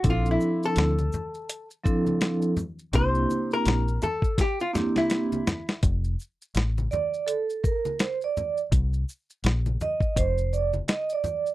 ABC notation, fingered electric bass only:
X:1
M:4/4
L:1/8
Q:"Swing 16ths" 1/4=83
K:F
V:1 name="Fingered electric bass" clef=bass
B,,, z D,, z4 z | C,, z B,,, z4 z | F,,, z A,,, z4 z | C,, z B,,, z F,,,2 z2 |]